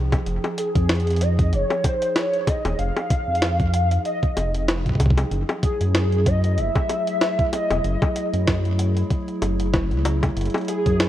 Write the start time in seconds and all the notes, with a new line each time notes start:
Already playing: C2 F3 D#4 G#4 G5
0.12 kick, closed hi-hat, high bongo
0.26 F1, closed hi-hat
0.44 closed hi-hat, high bongo
0.58 G#4, closed hi-hat
0.76 F2, kick, closed hi-hat
0.89 snare, closed hi-hat
0.95 closed hi-hat
1.00 closed hi-hat
1.07 closed hi-hat
1.10 closed hi-hat
1.16 closed hi-hat
1.21 D#5, closed hi-hat
1.39 kick, closed hi-hat
1.53 F1 C#5, closed hi-hat
1.70 closed hi-hat, high bongo
1.84 C5, kick, closed hi-hat, high bongo
2.02 closed hi-hat
2.16 C#5, snare, closed hi-hat
2.34 closed hi-hat
2.47 D#5, kick, closed hi-hat, high bongo
2.65 D#1, closed hi-hat, high bongo
2.79 F1 F5, closed hi-hat
2.97 closed hi-hat, high bongo
3.10 kick, closed hi-hat
3.28 F2
3.35 closed hi-hat
3.42 snare, closed hi-hat
3.60 kick, closed hi-hat
3.74 closed hi-hat
3.91 closed hi-hat
4.05 D#5, closed hi-hat
4.23 kick, closed hi-hat
4.37 F1, closed hi-hat, high bongo
4.55 closed hi-hat
4.68 snare, closed hi-hat
4.86 C2, kick, closed hi-hat
4.89 kick
4.95 kick
5.00 kick, closed hi-hat, high bongo
5.06 kick
5.10 kick
5.18 closed hi-hat, high bongo
5.32 F#1 F#3, closed hi-hat
5.43 E4
5.49 closed hi-hat, high bongo
5.53 A3
5.63 G#4, kick, closed hi-hat
5.81 F#2, closed hi-hat
5.95 snare, closed hi-hat
6.12 closed hi-hat
6.26 D#5, kick, closed hi-hat
6.44 closed hi-hat
6.58 F#1 E5, closed hi-hat
6.76 kick, closed hi-hat, high bongo
6.89 closed hi-hat, high bongo
7.07 closed hi-hat
7.21 snare, closed hi-hat
7.39 kick, closed hi-hat
7.53 D#5, closed hi-hat, high bongo
7.70 E1, closed hi-hat, high bongo
7.84 F#1, closed hi-hat
8.02 kick, closed hi-hat, high bongo
8.16 closed hi-hat
8.33 F#2, closed hi-hat
8.47 kick, snare, closed hi-hat
8.65 closed hi-hat
8.79 closed hi-hat
8.97 closed hi-hat
9.11 kick, closed hi-hat
9.28 closed hi-hat
9.42 F#1, closed hi-hat, high bongo
9.60 closed hi-hat
9.74 kick, snare, closed hi-hat
9.91 C#2, closed hi-hat
10.05 closed hi-hat, high bongo
10.23 kick, closed hi-hat, high bongo
10.37 F#1, closed hi-hat
10.41 closed hi-hat
10.46 closed hi-hat
10.50 closed hi-hat
10.54 closed hi-hat, high bongo
10.58 closed hi-hat
10.61 closed hi-hat
10.65 closed hi-hat
10.68 G#4, closed hi-hat
10.86 F#2, kick, closed hi-hat
11.00 snare, closed hi-hat